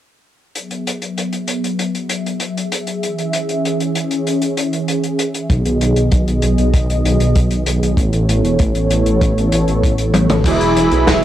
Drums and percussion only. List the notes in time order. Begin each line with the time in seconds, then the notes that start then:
0.55 closed hi-hat
0.71 closed hi-hat
0.87 closed hi-hat
1.02 closed hi-hat
1.18 closed hi-hat
1.32 closed hi-hat
1.48 closed hi-hat
1.64 closed hi-hat
1.79 closed hi-hat
1.95 closed hi-hat
2.09 closed hi-hat
2.26 closed hi-hat
2.40 closed hi-hat
2.57 closed hi-hat
2.72 closed hi-hat
2.87 closed hi-hat
3.03 closed hi-hat
3.18 closed hi-hat
3.33 closed hi-hat
3.49 closed hi-hat
3.65 closed hi-hat
3.80 closed hi-hat
3.95 closed hi-hat
4.11 closed hi-hat
4.27 closed hi-hat
4.42 closed hi-hat
4.57 closed hi-hat
4.73 closed hi-hat
4.88 closed hi-hat
5.03 closed hi-hat
5.19 closed hi-hat
5.34 closed hi-hat
5.50 kick, closed hi-hat
5.65 closed hi-hat
5.81 closed hi-hat
5.96 closed hi-hat
6.11 kick, closed hi-hat
6.28 closed hi-hat
6.42 closed hi-hat
6.58 closed hi-hat
6.74 kick, closed hi-hat
6.90 closed hi-hat
7.05 closed hi-hat
7.20 closed hi-hat
7.36 kick, closed hi-hat
7.51 closed hi-hat
7.66 closed hi-hat
7.83 closed hi-hat
7.97 kick, closed hi-hat
8.13 closed hi-hat
8.29 closed hi-hat
8.44 closed hi-hat
8.59 kick, closed hi-hat
8.75 closed hi-hat
8.90 closed hi-hat
9.06 closed hi-hat
9.21 kick, closed hi-hat
9.38 closed hi-hat
9.52 closed hi-hat
9.68 closed hi-hat
9.83 kick, closed hi-hat
9.98 closed hi-hat
10.14 closed hi-hat, high tom
10.29 closed hi-hat, mid tom
10.44 kick, closed hi-hat, crash
10.61 closed hi-hat
10.76 closed hi-hat
10.91 closed hi-hat
11.07 kick, snare, closed hi-hat